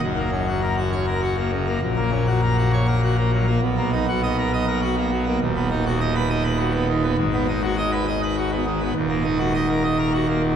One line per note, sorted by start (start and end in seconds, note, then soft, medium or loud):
0.02 1.78 F#1 medium
0.02 1.78 F#2 medium
0.17 0.30 A#3 medium
0.32 0.46 C#4 medium
0.47 0.61 F#4 medium
0.62 0.76 A#4 medium
0.78 0.91 F#4 medium
0.92 1.05 C#5 medium
1.07 1.21 A#4 medium
1.22 1.35 F#4 medium
1.37 1.51 A#3 medium
1.53 1.66 C#3 medium
1.67 1.80 A#3 medium
1.82 3.58 A#1 medium
1.82 3.58 A#2 medium
1.96 2.10 A#3 medium
2.12 2.25 C#4 medium
2.27 2.41 F#4 medium
2.42 2.56 A#4 medium
2.58 2.71 F#4 medium
2.73 2.86 C#5 medium
2.88 3.01 A#4 medium
3.03 3.16 F#4 medium
3.18 3.31 A#3 medium
3.33 3.46 F#3 medium
3.48 3.60 A#3 medium
3.62 5.37 B1 medium
3.62 5.37 B2 medium
3.77 3.91 A#3 medium
3.93 4.06 D#4 medium
4.08 4.21 F#4 medium
4.23 4.36 D#5 loud
4.38 4.51 A#4 medium
4.53 4.66 D#5 medium
4.67 4.80 A#4 medium
4.82 4.95 F#4 medium
4.97 5.10 A#3 medium
5.12 5.25 F#3 medium
5.26 5.39 A#3 medium
5.40 7.14 D#1 medium
5.40 7.14 D#2 medium
5.56 5.69 B3 medium
5.70 5.84 D#4 medium
5.86 5.99 F#4 medium
6.00 6.13 D#5 loud
6.15 6.28 B4 medium
6.30 6.43 D#5 medium
6.44 6.57 B4 medium
6.59 6.72 F#4 medium
6.74 6.87 B3 medium
6.89 7.02 D#3 medium
7.03 7.16 B3 medium
7.18 8.92 G#1 medium
7.18 8.92 G#2 medium
7.33 7.46 B3 medium
7.48 7.61 D#4 medium
7.63 7.76 F#4 medium
7.77 7.91 D#5 loud
7.92 8.06 B4 medium
8.07 8.20 D#5 medium
8.23 8.35 B4 medium
8.37 8.50 F#4 medium
8.52 8.65 B3 medium
8.66 8.79 D#3 medium
8.81 8.93 B3 medium
8.95 10.56 D#1 medium
8.95 10.56 D#2 medium
9.10 9.23 A#3 medium
9.24 9.37 D#4 medium
9.39 9.52 F#4 medium
9.54 9.67 D#5 loud
9.69 9.82 A#4 medium
9.83 9.97 D#5 medium
9.99 10.12 A#4 medium
10.13 10.27 F#4 medium
10.28 10.41 A#3 medium
10.42 10.56 A#2 medium